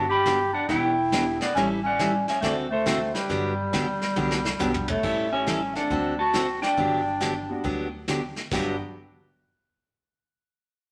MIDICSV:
0, 0, Header, 1, 7, 480
1, 0, Start_track
1, 0, Key_signature, 1, "major"
1, 0, Tempo, 434783
1, 1722, Time_signature, 4, 2, 24, 8
1, 12052, End_track
2, 0, Start_track
2, 0, Title_t, "Electric slide guitar"
2, 0, Program_c, 0, 29
2, 122, Note_on_c, 0, 83, 110
2, 130, Note_on_c, 0, 79, 85
2, 570, Note_off_c, 0, 79, 0
2, 601, Note_on_c, 0, 78, 96
2, 607, Note_on_c, 0, 74, 66
2, 614, Note_off_c, 0, 83, 0
2, 756, Note_off_c, 0, 74, 0
2, 764, Note_off_c, 0, 78, 0
2, 768, Note_on_c, 0, 79, 96
2, 774, Note_on_c, 0, 76, 75
2, 1518, Note_off_c, 0, 76, 0
2, 1565, Note_on_c, 0, 74, 92
2, 1579, Note_on_c, 0, 71, 77
2, 1583, Note_off_c, 0, 79, 0
2, 1723, Note_off_c, 0, 71, 0
2, 1731, Note_off_c, 0, 74, 0
2, 1733, Note_on_c, 0, 76, 93
2, 1738, Note_on_c, 0, 73, 76
2, 1816, Note_off_c, 0, 76, 0
2, 1821, Note_off_c, 0, 73, 0
2, 2056, Note_on_c, 0, 78, 98
2, 2066, Note_on_c, 0, 74, 78
2, 2498, Note_off_c, 0, 74, 0
2, 2535, Note_off_c, 0, 78, 0
2, 2538, Note_on_c, 0, 73, 70
2, 2540, Note_on_c, 0, 76, 99
2, 2682, Note_off_c, 0, 73, 0
2, 2691, Note_on_c, 0, 74, 100
2, 2697, Note_off_c, 0, 76, 0
2, 2699, Note_on_c, 0, 69, 75
2, 2774, Note_off_c, 0, 74, 0
2, 2782, Note_off_c, 0, 69, 0
2, 3007, Note_on_c, 0, 72, 91
2, 3015, Note_on_c, 0, 69, 67
2, 3452, Note_off_c, 0, 69, 0
2, 3483, Note_off_c, 0, 72, 0
2, 3484, Note_on_c, 0, 67, 66
2, 3488, Note_on_c, 0, 71, 80
2, 5355, Note_off_c, 0, 67, 0
2, 5356, Note_off_c, 0, 71, 0
2, 5402, Note_on_c, 0, 73, 81
2, 5414, Note_on_c, 0, 69, 72
2, 5851, Note_off_c, 0, 69, 0
2, 5880, Note_off_c, 0, 73, 0
2, 5881, Note_on_c, 0, 76, 96
2, 5893, Note_on_c, 0, 73, 73
2, 6331, Note_off_c, 0, 73, 0
2, 6361, Note_off_c, 0, 76, 0
2, 6365, Note_on_c, 0, 78, 95
2, 6371, Note_on_c, 0, 74, 68
2, 6807, Note_off_c, 0, 78, 0
2, 6810, Note_off_c, 0, 74, 0
2, 6834, Note_on_c, 0, 78, 76
2, 6834, Note_on_c, 0, 81, 100
2, 7280, Note_off_c, 0, 81, 0
2, 7282, Note_off_c, 0, 78, 0
2, 7310, Note_on_c, 0, 79, 94
2, 7318, Note_on_c, 0, 74, 78
2, 8876, Note_off_c, 0, 79, 0
2, 8879, Note_off_c, 0, 74, 0
2, 12052, End_track
3, 0, Start_track
3, 0, Title_t, "Upright piano"
3, 0, Program_c, 1, 0
3, 1236, Note_on_c, 1, 55, 56
3, 1244, Note_on_c, 1, 59, 58
3, 1245, Note_on_c, 1, 62, 61
3, 1249, Note_on_c, 1, 64, 56
3, 1251, Note_on_c, 1, 67, 71
3, 1522, Note_off_c, 1, 55, 0
3, 1526, Note_off_c, 1, 59, 0
3, 1526, Note_off_c, 1, 62, 0
3, 1528, Note_off_c, 1, 64, 0
3, 1530, Note_off_c, 1, 67, 0
3, 3152, Note_on_c, 1, 54, 61
3, 3153, Note_on_c, 1, 57, 53
3, 3157, Note_on_c, 1, 60, 52
3, 3158, Note_on_c, 1, 62, 48
3, 3162, Note_on_c, 1, 66, 58
3, 3439, Note_off_c, 1, 54, 0
3, 3440, Note_off_c, 1, 57, 0
3, 3442, Note_off_c, 1, 60, 0
3, 3442, Note_off_c, 1, 62, 0
3, 3444, Note_off_c, 1, 66, 0
3, 5080, Note_on_c, 1, 55, 67
3, 5084, Note_on_c, 1, 59, 57
3, 5088, Note_on_c, 1, 62, 60
3, 5089, Note_on_c, 1, 66, 56
3, 5095, Note_on_c, 1, 67, 71
3, 5363, Note_off_c, 1, 55, 0
3, 5365, Note_off_c, 1, 59, 0
3, 5367, Note_off_c, 1, 62, 0
3, 5368, Note_off_c, 1, 66, 0
3, 5371, Note_off_c, 1, 67, 0
3, 5873, Note_on_c, 1, 57, 76
3, 5877, Note_on_c, 1, 61, 69
3, 5882, Note_on_c, 1, 64, 62
3, 5884, Note_on_c, 1, 67, 71
3, 6023, Note_off_c, 1, 57, 0
3, 6025, Note_off_c, 1, 61, 0
3, 6027, Note_off_c, 1, 64, 0
3, 6028, Note_off_c, 1, 67, 0
3, 6358, Note_on_c, 1, 57, 74
3, 6361, Note_on_c, 1, 60, 62
3, 6365, Note_on_c, 1, 62, 67
3, 6370, Note_on_c, 1, 69, 80
3, 6506, Note_off_c, 1, 57, 0
3, 6507, Note_off_c, 1, 60, 0
3, 6509, Note_off_c, 1, 62, 0
3, 6512, Note_off_c, 1, 69, 0
3, 7482, Note_on_c, 1, 55, 63
3, 7483, Note_on_c, 1, 59, 57
3, 7488, Note_on_c, 1, 62, 57
3, 7494, Note_on_c, 1, 66, 62
3, 7765, Note_off_c, 1, 55, 0
3, 7765, Note_off_c, 1, 59, 0
3, 7768, Note_off_c, 1, 62, 0
3, 7771, Note_off_c, 1, 66, 0
3, 8270, Note_on_c, 1, 55, 70
3, 8274, Note_on_c, 1, 59, 66
3, 8282, Note_on_c, 1, 62, 65
3, 8288, Note_on_c, 1, 66, 82
3, 8422, Note_off_c, 1, 55, 0
3, 8424, Note_off_c, 1, 59, 0
3, 8428, Note_off_c, 1, 62, 0
3, 8431, Note_off_c, 1, 66, 0
3, 9408, Note_on_c, 1, 55, 75
3, 9412, Note_on_c, 1, 59, 68
3, 9415, Note_on_c, 1, 62, 72
3, 9418, Note_on_c, 1, 66, 77
3, 9688, Note_off_c, 1, 55, 0
3, 9690, Note_off_c, 1, 59, 0
3, 9692, Note_off_c, 1, 62, 0
3, 9693, Note_off_c, 1, 66, 0
3, 12052, End_track
4, 0, Start_track
4, 0, Title_t, "Clarinet"
4, 0, Program_c, 2, 71
4, 103, Note_on_c, 2, 67, 90
4, 556, Note_off_c, 2, 67, 0
4, 585, Note_on_c, 2, 62, 87
4, 744, Note_off_c, 2, 62, 0
4, 750, Note_on_c, 2, 64, 86
4, 1506, Note_off_c, 2, 64, 0
4, 1553, Note_on_c, 2, 59, 72
4, 1705, Note_off_c, 2, 59, 0
4, 1712, Note_on_c, 2, 61, 86
4, 1855, Note_off_c, 2, 61, 0
4, 2026, Note_on_c, 2, 61, 84
4, 2477, Note_off_c, 2, 61, 0
4, 2517, Note_on_c, 2, 61, 82
4, 2655, Note_off_c, 2, 61, 0
4, 2662, Note_on_c, 2, 57, 67
4, 2807, Note_off_c, 2, 57, 0
4, 2982, Note_on_c, 2, 57, 85
4, 3435, Note_off_c, 2, 57, 0
4, 3462, Note_on_c, 2, 55, 78
4, 5344, Note_off_c, 2, 55, 0
4, 5397, Note_on_c, 2, 57, 75
4, 5842, Note_off_c, 2, 57, 0
4, 5877, Note_on_c, 2, 61, 75
4, 6322, Note_off_c, 2, 61, 0
4, 6356, Note_on_c, 2, 62, 92
4, 6802, Note_off_c, 2, 62, 0
4, 6846, Note_on_c, 2, 66, 89
4, 7287, Note_off_c, 2, 66, 0
4, 7307, Note_on_c, 2, 62, 86
4, 8874, Note_off_c, 2, 62, 0
4, 12052, End_track
5, 0, Start_track
5, 0, Title_t, "Steel-string acoustic guitar"
5, 0, Program_c, 3, 25
5, 282, Note_on_c, 3, 50, 67
5, 288, Note_on_c, 3, 54, 76
5, 291, Note_on_c, 3, 59, 62
5, 291, Note_on_c, 3, 67, 70
5, 292, Note_on_c, 3, 62, 73
5, 413, Note_off_c, 3, 50, 0
5, 416, Note_off_c, 3, 54, 0
5, 417, Note_off_c, 3, 59, 0
5, 417, Note_off_c, 3, 67, 0
5, 418, Note_off_c, 3, 62, 0
5, 763, Note_on_c, 3, 52, 61
5, 768, Note_on_c, 3, 59, 62
5, 772, Note_on_c, 3, 62, 65
5, 773, Note_on_c, 3, 67, 66
5, 1008, Note_off_c, 3, 52, 0
5, 1011, Note_off_c, 3, 59, 0
5, 1013, Note_off_c, 3, 62, 0
5, 1014, Note_off_c, 3, 67, 0
5, 1240, Note_on_c, 3, 52, 70
5, 1244, Note_on_c, 3, 59, 68
5, 1245, Note_on_c, 3, 62, 79
5, 1249, Note_on_c, 3, 67, 80
5, 1371, Note_off_c, 3, 52, 0
5, 1373, Note_off_c, 3, 59, 0
5, 1374, Note_off_c, 3, 62, 0
5, 1376, Note_off_c, 3, 67, 0
5, 1728, Note_on_c, 3, 52, 62
5, 1731, Note_on_c, 3, 55, 61
5, 1733, Note_on_c, 3, 61, 58
5, 1738, Note_on_c, 3, 64, 57
5, 1738, Note_on_c, 3, 69, 61
5, 1971, Note_off_c, 3, 52, 0
5, 1972, Note_off_c, 3, 55, 0
5, 1973, Note_off_c, 3, 61, 0
5, 1975, Note_off_c, 3, 64, 0
5, 1976, Note_off_c, 3, 69, 0
5, 2199, Note_on_c, 3, 52, 60
5, 2202, Note_on_c, 3, 61, 64
5, 2204, Note_on_c, 3, 55, 63
5, 2207, Note_on_c, 3, 64, 72
5, 2209, Note_on_c, 3, 69, 73
5, 2331, Note_off_c, 3, 52, 0
5, 2332, Note_off_c, 3, 61, 0
5, 2333, Note_off_c, 3, 55, 0
5, 2334, Note_off_c, 3, 64, 0
5, 2336, Note_off_c, 3, 69, 0
5, 2674, Note_on_c, 3, 50, 60
5, 2678, Note_on_c, 3, 57, 65
5, 2680, Note_on_c, 3, 60, 64
5, 2684, Note_on_c, 3, 69, 65
5, 2685, Note_on_c, 3, 66, 61
5, 2923, Note_off_c, 3, 50, 0
5, 2925, Note_off_c, 3, 57, 0
5, 2926, Note_off_c, 3, 60, 0
5, 2929, Note_off_c, 3, 66, 0
5, 2929, Note_off_c, 3, 69, 0
5, 3155, Note_on_c, 3, 57, 69
5, 3156, Note_on_c, 3, 50, 69
5, 3162, Note_on_c, 3, 66, 74
5, 3163, Note_on_c, 3, 60, 71
5, 3164, Note_on_c, 3, 69, 80
5, 3288, Note_off_c, 3, 57, 0
5, 3289, Note_off_c, 3, 50, 0
5, 3292, Note_off_c, 3, 60, 0
5, 3292, Note_off_c, 3, 66, 0
5, 3293, Note_off_c, 3, 69, 0
5, 3634, Note_on_c, 3, 50, 58
5, 3638, Note_on_c, 3, 54, 53
5, 3642, Note_on_c, 3, 59, 62
5, 3644, Note_on_c, 3, 67, 64
5, 3646, Note_on_c, 3, 62, 61
5, 3883, Note_off_c, 3, 50, 0
5, 3885, Note_off_c, 3, 54, 0
5, 3887, Note_off_c, 3, 59, 0
5, 3888, Note_off_c, 3, 67, 0
5, 3889, Note_off_c, 3, 62, 0
5, 4118, Note_on_c, 3, 50, 72
5, 4122, Note_on_c, 3, 59, 78
5, 4123, Note_on_c, 3, 54, 66
5, 4126, Note_on_c, 3, 67, 78
5, 4127, Note_on_c, 3, 62, 80
5, 4250, Note_off_c, 3, 50, 0
5, 4251, Note_off_c, 3, 59, 0
5, 4252, Note_off_c, 3, 54, 0
5, 4254, Note_off_c, 3, 62, 0
5, 4254, Note_off_c, 3, 67, 0
5, 4596, Note_on_c, 3, 50, 65
5, 4598, Note_on_c, 3, 54, 63
5, 4601, Note_on_c, 3, 59, 61
5, 4601, Note_on_c, 3, 62, 66
5, 4604, Note_on_c, 3, 67, 70
5, 4844, Note_off_c, 3, 50, 0
5, 4845, Note_off_c, 3, 54, 0
5, 4846, Note_off_c, 3, 62, 0
5, 4847, Note_off_c, 3, 59, 0
5, 4848, Note_off_c, 3, 67, 0
5, 5070, Note_on_c, 3, 50, 66
5, 5074, Note_on_c, 3, 54, 73
5, 5075, Note_on_c, 3, 59, 84
5, 5080, Note_on_c, 3, 62, 79
5, 5083, Note_on_c, 3, 67, 81
5, 5205, Note_off_c, 3, 50, 0
5, 5207, Note_off_c, 3, 54, 0
5, 5208, Note_off_c, 3, 59, 0
5, 5211, Note_off_c, 3, 62, 0
5, 5212, Note_off_c, 3, 67, 0
5, 5552, Note_on_c, 3, 52, 50
5, 5558, Note_on_c, 3, 55, 62
5, 5561, Note_on_c, 3, 61, 58
5, 5562, Note_on_c, 3, 64, 53
5, 5562, Note_on_c, 3, 69, 59
5, 5802, Note_off_c, 3, 52, 0
5, 5805, Note_off_c, 3, 55, 0
5, 5806, Note_off_c, 3, 61, 0
5, 5807, Note_off_c, 3, 64, 0
5, 5807, Note_off_c, 3, 69, 0
5, 6033, Note_on_c, 3, 52, 66
5, 6037, Note_on_c, 3, 55, 68
5, 6039, Note_on_c, 3, 64, 71
5, 6043, Note_on_c, 3, 61, 64
5, 6043, Note_on_c, 3, 69, 77
5, 6167, Note_off_c, 3, 52, 0
5, 6169, Note_off_c, 3, 55, 0
5, 6170, Note_off_c, 3, 64, 0
5, 6172, Note_off_c, 3, 61, 0
5, 6172, Note_off_c, 3, 69, 0
5, 6516, Note_on_c, 3, 50, 61
5, 6519, Note_on_c, 3, 57, 62
5, 6523, Note_on_c, 3, 66, 66
5, 6524, Note_on_c, 3, 60, 60
5, 6526, Note_on_c, 3, 69, 73
5, 6764, Note_off_c, 3, 50, 0
5, 6766, Note_off_c, 3, 57, 0
5, 6768, Note_off_c, 3, 60, 0
5, 6768, Note_off_c, 3, 66, 0
5, 6769, Note_off_c, 3, 69, 0
5, 6991, Note_on_c, 3, 50, 66
5, 6996, Note_on_c, 3, 57, 65
5, 6996, Note_on_c, 3, 60, 75
5, 6999, Note_on_c, 3, 66, 74
5, 6999, Note_on_c, 3, 69, 69
5, 7126, Note_off_c, 3, 50, 0
5, 7129, Note_off_c, 3, 57, 0
5, 7129, Note_off_c, 3, 60, 0
5, 7130, Note_off_c, 3, 66, 0
5, 7130, Note_off_c, 3, 69, 0
5, 7475, Note_on_c, 3, 50, 55
5, 7479, Note_on_c, 3, 54, 64
5, 7481, Note_on_c, 3, 59, 57
5, 7486, Note_on_c, 3, 62, 65
5, 7487, Note_on_c, 3, 67, 64
5, 7724, Note_off_c, 3, 50, 0
5, 7726, Note_off_c, 3, 54, 0
5, 7727, Note_off_c, 3, 59, 0
5, 7730, Note_off_c, 3, 62, 0
5, 7730, Note_off_c, 3, 67, 0
5, 7953, Note_on_c, 3, 54, 68
5, 7955, Note_on_c, 3, 50, 66
5, 7956, Note_on_c, 3, 59, 71
5, 7959, Note_on_c, 3, 62, 63
5, 7959, Note_on_c, 3, 67, 69
5, 8088, Note_off_c, 3, 50, 0
5, 8088, Note_off_c, 3, 54, 0
5, 8089, Note_off_c, 3, 59, 0
5, 8091, Note_off_c, 3, 62, 0
5, 8091, Note_off_c, 3, 67, 0
5, 8432, Note_on_c, 3, 50, 62
5, 8436, Note_on_c, 3, 54, 57
5, 8440, Note_on_c, 3, 59, 69
5, 8440, Note_on_c, 3, 62, 62
5, 8443, Note_on_c, 3, 67, 60
5, 8683, Note_off_c, 3, 50, 0
5, 8685, Note_off_c, 3, 54, 0
5, 8687, Note_off_c, 3, 59, 0
5, 8687, Note_off_c, 3, 62, 0
5, 8689, Note_off_c, 3, 67, 0
5, 8923, Note_on_c, 3, 50, 58
5, 8923, Note_on_c, 3, 54, 71
5, 8926, Note_on_c, 3, 59, 63
5, 8926, Note_on_c, 3, 62, 70
5, 8929, Note_on_c, 3, 67, 70
5, 9053, Note_off_c, 3, 50, 0
5, 9053, Note_off_c, 3, 54, 0
5, 9054, Note_off_c, 3, 62, 0
5, 9055, Note_off_c, 3, 59, 0
5, 9056, Note_off_c, 3, 67, 0
5, 9397, Note_on_c, 3, 43, 70
5, 9400, Note_on_c, 3, 50, 68
5, 9401, Note_on_c, 3, 54, 67
5, 9404, Note_on_c, 3, 59, 76
5, 9407, Note_on_c, 3, 62, 67
5, 9413, Note_on_c, 3, 67, 73
5, 9652, Note_off_c, 3, 43, 0
5, 9653, Note_off_c, 3, 50, 0
5, 9654, Note_off_c, 3, 54, 0
5, 9655, Note_off_c, 3, 59, 0
5, 9656, Note_off_c, 3, 62, 0
5, 9660, Note_off_c, 3, 67, 0
5, 12052, End_track
6, 0, Start_track
6, 0, Title_t, "Upright bass"
6, 0, Program_c, 4, 32
6, 0, Note_on_c, 4, 31, 84
6, 571, Note_off_c, 4, 31, 0
6, 760, Note_on_c, 4, 28, 103
6, 1528, Note_off_c, 4, 28, 0
6, 1721, Note_on_c, 4, 33, 84
6, 2489, Note_off_c, 4, 33, 0
6, 2680, Note_on_c, 4, 38, 95
6, 3448, Note_off_c, 4, 38, 0
6, 3638, Note_on_c, 4, 31, 84
6, 4023, Note_off_c, 4, 31, 0
6, 4118, Note_on_c, 4, 38, 74
6, 4527, Note_off_c, 4, 38, 0
6, 4599, Note_on_c, 4, 36, 84
6, 5008, Note_off_c, 4, 36, 0
6, 5084, Note_on_c, 4, 35, 82
6, 5490, Note_off_c, 4, 35, 0
6, 5555, Note_on_c, 4, 33, 83
6, 6326, Note_off_c, 4, 33, 0
6, 6518, Note_on_c, 4, 38, 97
6, 7287, Note_off_c, 4, 38, 0
6, 7478, Note_on_c, 4, 31, 82
6, 8248, Note_off_c, 4, 31, 0
6, 8439, Note_on_c, 4, 38, 92
6, 9209, Note_off_c, 4, 38, 0
6, 9400, Note_on_c, 4, 31, 81
6, 9694, Note_off_c, 4, 31, 0
6, 12052, End_track
7, 0, Start_track
7, 0, Title_t, "Drums"
7, 281, Note_on_c, 9, 36, 20
7, 283, Note_on_c, 9, 38, 59
7, 283, Note_on_c, 9, 44, 49
7, 392, Note_off_c, 9, 36, 0
7, 393, Note_off_c, 9, 38, 0
7, 393, Note_off_c, 9, 44, 0
7, 759, Note_on_c, 9, 25, 56
7, 759, Note_on_c, 9, 38, 43
7, 760, Note_on_c, 9, 36, 25
7, 869, Note_off_c, 9, 38, 0
7, 870, Note_off_c, 9, 36, 0
7, 1240, Note_on_c, 9, 36, 27
7, 1240, Note_on_c, 9, 38, 65
7, 1240, Note_on_c, 9, 44, 52
7, 1350, Note_off_c, 9, 36, 0
7, 1350, Note_off_c, 9, 38, 0
7, 1350, Note_off_c, 9, 44, 0
7, 1554, Note_on_c, 9, 38, 51
7, 1665, Note_off_c, 9, 38, 0
7, 1720, Note_on_c, 9, 36, 21
7, 1727, Note_off_c, 9, 25, 0
7, 1727, Note_on_c, 9, 25, 39
7, 1727, Note_on_c, 9, 38, 43
7, 1831, Note_off_c, 9, 36, 0
7, 1837, Note_off_c, 9, 38, 0
7, 2199, Note_on_c, 9, 36, 21
7, 2200, Note_on_c, 9, 38, 54
7, 2200, Note_on_c, 9, 44, 56
7, 2310, Note_off_c, 9, 36, 0
7, 2310, Note_off_c, 9, 38, 0
7, 2310, Note_off_c, 9, 44, 0
7, 2516, Note_on_c, 9, 38, 40
7, 2626, Note_off_c, 9, 38, 0
7, 2680, Note_on_c, 9, 36, 26
7, 2681, Note_off_c, 9, 25, 0
7, 2681, Note_on_c, 9, 25, 48
7, 2681, Note_on_c, 9, 38, 45
7, 2790, Note_off_c, 9, 36, 0
7, 2791, Note_off_c, 9, 38, 0
7, 3160, Note_on_c, 9, 36, 18
7, 3162, Note_on_c, 9, 38, 70
7, 3162, Note_on_c, 9, 44, 70
7, 3270, Note_off_c, 9, 36, 0
7, 3272, Note_off_c, 9, 38, 0
7, 3272, Note_off_c, 9, 44, 0
7, 3474, Note_on_c, 9, 38, 44
7, 3584, Note_off_c, 9, 38, 0
7, 3639, Note_on_c, 9, 36, 17
7, 3640, Note_off_c, 9, 25, 0
7, 3640, Note_on_c, 9, 25, 47
7, 3640, Note_on_c, 9, 38, 44
7, 3749, Note_off_c, 9, 36, 0
7, 3750, Note_off_c, 9, 38, 0
7, 4117, Note_on_c, 9, 36, 20
7, 4117, Note_on_c, 9, 38, 52
7, 4117, Note_on_c, 9, 44, 45
7, 4227, Note_off_c, 9, 38, 0
7, 4227, Note_off_c, 9, 44, 0
7, 4228, Note_off_c, 9, 36, 0
7, 4433, Note_on_c, 9, 38, 40
7, 4544, Note_off_c, 9, 38, 0
7, 4593, Note_on_c, 9, 48, 43
7, 4703, Note_off_c, 9, 48, 0
7, 4756, Note_on_c, 9, 38, 59
7, 4866, Note_off_c, 9, 38, 0
7, 4914, Note_on_c, 9, 38, 69
7, 5024, Note_off_c, 9, 38, 0
7, 5077, Note_on_c, 9, 43, 65
7, 5077, Note_on_c, 9, 44, 60
7, 5188, Note_off_c, 9, 43, 0
7, 5188, Note_off_c, 9, 44, 0
7, 5236, Note_on_c, 9, 43, 67
7, 5346, Note_off_c, 9, 43, 0
7, 5388, Note_on_c, 9, 43, 89
7, 5498, Note_off_c, 9, 43, 0
7, 5558, Note_on_c, 9, 36, 72
7, 5560, Note_off_c, 9, 25, 0
7, 5560, Note_on_c, 9, 25, 44
7, 5560, Note_on_c, 9, 49, 65
7, 5669, Note_off_c, 9, 36, 0
7, 5671, Note_off_c, 9, 49, 0
7, 6043, Note_on_c, 9, 38, 57
7, 6043, Note_on_c, 9, 44, 48
7, 6153, Note_off_c, 9, 38, 0
7, 6153, Note_off_c, 9, 44, 0
7, 6352, Note_on_c, 9, 38, 39
7, 6462, Note_off_c, 9, 38, 0
7, 6519, Note_off_c, 9, 25, 0
7, 6519, Note_on_c, 9, 25, 55
7, 6519, Note_on_c, 9, 36, 31
7, 6630, Note_off_c, 9, 36, 0
7, 7000, Note_on_c, 9, 38, 69
7, 7000, Note_on_c, 9, 44, 64
7, 7111, Note_off_c, 9, 38, 0
7, 7111, Note_off_c, 9, 44, 0
7, 7316, Note_on_c, 9, 38, 43
7, 7426, Note_off_c, 9, 38, 0
7, 7477, Note_off_c, 9, 25, 0
7, 7477, Note_on_c, 9, 25, 42
7, 7479, Note_on_c, 9, 36, 28
7, 7589, Note_off_c, 9, 36, 0
7, 7960, Note_on_c, 9, 38, 61
7, 7960, Note_on_c, 9, 44, 42
7, 8070, Note_off_c, 9, 38, 0
7, 8070, Note_off_c, 9, 44, 0
7, 8440, Note_on_c, 9, 36, 33
7, 8441, Note_off_c, 9, 25, 0
7, 8441, Note_on_c, 9, 25, 40
7, 8550, Note_off_c, 9, 36, 0
7, 8918, Note_on_c, 9, 38, 64
7, 8918, Note_on_c, 9, 44, 59
7, 9028, Note_off_c, 9, 38, 0
7, 9028, Note_off_c, 9, 44, 0
7, 9232, Note_on_c, 9, 38, 37
7, 9342, Note_off_c, 9, 38, 0
7, 9401, Note_on_c, 9, 36, 81
7, 9402, Note_on_c, 9, 38, 67
7, 9402, Note_on_c, 9, 49, 69
7, 9512, Note_off_c, 9, 36, 0
7, 9512, Note_off_c, 9, 38, 0
7, 9512, Note_off_c, 9, 49, 0
7, 9784, Note_off_c, 9, 25, 0
7, 12052, End_track
0, 0, End_of_file